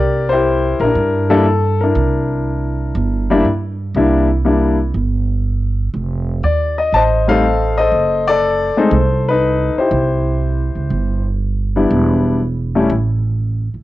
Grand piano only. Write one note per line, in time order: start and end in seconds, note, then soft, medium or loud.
0.00 0.31 G4 medium
0.00 0.77 A#4 medium
0.00 0.31 D5 medium
0.29 0.82 E4 medium
0.29 1.27 G4 medium
0.29 0.81 C5 medium
0.80 1.29 D4 medium
0.80 1.30 E4 medium
0.80 1.27 A#4 medium
1.30 1.44 G3 medium
1.30 1.44 A#3 medium
1.30 1.44 D4 medium
1.30 1.45 E4 medium
1.30 1.82 A4 medium
1.81 3.28 D4 medium
1.81 3.27 E4 soft
1.81 3.26 A#4 medium
3.30 3.44 G3 medium
3.30 3.44 A#3 medium
3.30 3.45 D4 medium
3.30 3.44 E4 medium
3.96 4.26 G3 medium
3.96 4.26 A#3 medium
3.96 4.27 D4 medium
3.96 4.27 E4 medium
4.45 4.76 G3 medium
4.45 4.76 A#3 medium
4.45 4.76 D4 medium
4.45 4.76 E4 medium
6.44 6.76 D5 medium
6.78 6.94 D#5 medium
6.94 7.29 C5 medium
6.94 7.76 D#5 medium
6.94 7.02 A5 medium
7.28 7.42 G3 medium
7.28 7.42 A3 medium
7.28 7.42 C4 medium
7.28 7.42 D#4 medium
7.28 7.79 A4 medium
7.28 7.79 C5 medium
7.28 7.80 F5 loud
7.78 8.28 A4 medium
7.78 8.74 C5 medium
7.78 8.29 D#5 medium
8.28 8.78 A4 medium
8.28 8.79 D5 loud
8.77 8.91 G#3 medium
8.77 8.91 A3 medium
8.77 8.91 C4 medium
8.77 8.92 D#4 medium
8.77 9.74 A4 medium
8.77 9.24 C5 medium
9.28 9.90 D#4 medium
9.28 9.74 B4 medium
9.78 11.23 E4 soft
9.78 11.23 G4 soft
9.78 11.22 C5 medium
11.76 12.38 G3 medium
11.76 12.38 B3 soft
11.76 12.38 D4 soft
11.76 12.38 E4 medium
12.75 12.89 G3 medium
12.75 12.89 A3 medium
12.75 12.89 C#4 medium
12.75 12.89 E4 medium